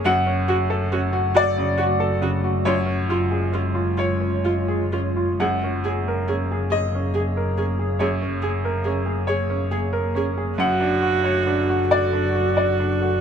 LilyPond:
<<
  \new Staff \with { instrumentName = "Ambient pad" } { \time 6/8 \key fis \major \tempo 4. = 46 <a fis' fis''>2. | <gis eis' cis''>2. | <ais gis' cis''>2.~ | <ais gis' cis''>2. |
<d' fis' a'>2. | }
  \new Staff \with { instrumentName = "Upright piano" } { \time 6/8 \key fis \major << { fis''4. d''4. | cis''4. cis''4. | fis''4. dis''4. | cis''4. cis''4. |
fis''4. d''4. | } \\ { fis,16 cis'16 fis'16 a'16 cis'16 fis'8 cis16 fis'16 a'16 cis16 fis'16 | fis,16 cis'16 eis'16 gis'16 cis'16 eis'8 cis'16 eis'16 gis'16 cis'16 eis'16 | fis,16 cis'16 gis'16 ais'16 cis'16 gis'8 cis'16 gis'16 ais'16 cis'16 gis'16 | fis,16 cis'16 gis'16 ais'16 cis'16 gis'8 cis'16 gis'16 ais'16 cis'16 gis'16 |
fis,16 d'16 fis'16 cis''16 d'16 fis'8 d'16 fis'16 d''16 d'16 fis'16 | } >> }
  \new Staff \with { instrumentName = "Viola" } { \time 6/8 \key fis \major fis'8 fis'8 fis'8 fis'8 fis'8 fis'8 | eis'8 eis'8 eis'8 eis'8 eis'8 eis'8 | gis'8 gis'8 gis'8 gis'8 gis'8 gis'8 | gis'8 gis'8 gis'8 gis'8 gis'8 gis'8 |
fis'4. fis'4. | }
  \new Staff \with { instrumentName = "Double bass" } { \clef bass \time 6/8 \key fis \major fis,,2.~ | fis,,2. | fis,,2.~ | fis,,2. |
fis,,2. | }
>>